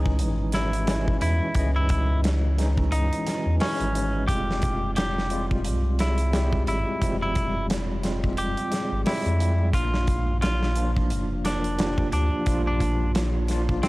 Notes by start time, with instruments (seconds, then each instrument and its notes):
Already playing: sub bass C#2, tine electric piano E3 G#3 C#4 D#4
0.06 kick
0.19 sub bass G#1, closed hi-hat
0.52 tine electric piano E3 G#3 C#4 F#4, clean electric guitar E4, snare, closed hi-hat
0.73 closed hi-hat
0.87 tine electric piano E3 G#3 C#4 E4, snare, closed hi-hat
1.08 kick
1.21 sub bass E2, clean electric guitar E4, closed hi-hat
1.55 sub bass C#2, tine electric piano E3 G#3 C#4 D#5, kick, closed hi-hat
1.76 clean electric guitar E4
1.89 kick, closed hi-hat
2.24 snare, closed hi-hat
2.57 tine electric piano E3 G#3 C#4 D#4, snare, closed hi-hat
2.77 kick
2.92 sub bass C#2, clean electric guitar D#4, closed hi-hat
3.13 closed hi-hat
3.26 tine electric piano E3 G#3 C#4 F#4, snare, closed hi-hat
3.46 sub bass E2
3.60 tine electric piano E3 G#3 C#4 E4, clean electric guitar C#4, snare, open hi-hat
3.80 sub bass G#1, closed hi-hat
3.95 closed hi-hat
4.28 sub bass F1, tine electric piano G3 G#3 C4 F4, clean electric guitar G4, kick, closed hi-hat
4.51 snare
4.62 kick, closed hi-hat
4.96 clean electric guitar G4, snare, closed hi-hat
5.18 snare
5.30 tine electric piano G3 G#3 C4 F4, closed hi-hat
5.51 kick
5.64 sub bass C2, closed hi-hat
5.99 tine electric piano G3 G#3 C4 G#4, clean electric guitar E4, snare, closed hi-hat
6.18 closed hi-hat
6.33 tine electric piano G3 G#3 C4 G4, snare, closed hi-hat
6.53 kick
6.67 sub bass G#1, clean electric guitar E4, closed hi-hat
7.00 sub bass F1, tine electric piano F3 G3 G#3 C4, kick, closed hi-hat
7.22 clean electric guitar E4
7.35 kick, closed hi-hat
7.70 snare, closed hi-hat
8.03 tine electric piano G3 G#3 C4 F4, snare, closed hi-hat
8.24 kick
8.37 sub bass F1, clean electric guitar G4, closed hi-hat
8.57 closed hi-hat
8.71 tine electric piano G3 G#3 C4 G#4, snare, closed hi-hat
8.92 sub bass G#1
9.05 tine electric piano G3 G#3 C4 G4, clean electric guitar E4, snare, open hi-hat
9.26 sub bass F2, closed hi-hat
9.40 closed hi-hat
9.73 sub bass A#1, tine electric piano F3 A#3 D4 F4, clean electric guitar F4, kick, closed hi-hat
9.94 snare
10.07 kick, closed hi-hat
10.42 clean electric guitar F4, snare, closed hi-hat
10.63 snare
10.76 tine electric piano F3 A#3 D4 F4, closed hi-hat
10.96 kick
11.10 sub bass F1, closed hi-hat
11.45 tine electric piano F3 A#3 D4 A#4, clean electric guitar D4, snare, closed hi-hat
11.64 closed hi-hat
11.78 tine electric piano F3 A#3 D4 G4, snare, closed hi-hat
11.98 kick
12.12 sub bass D2, clean electric guitar D4, closed hi-hat
12.46 sub bass A#1, tine electric piano F3 A#3 D4 F4, kick, closed hi-hat
12.67 clean electric guitar D4
12.80 kick, closed hi-hat
13.15 snare, closed hi-hat
13.48 tine electric piano F3 A#3 D4 F4, snare, closed hi-hat
13.69 kick
13.83 clean electric guitar C4, snare, closed hi-hat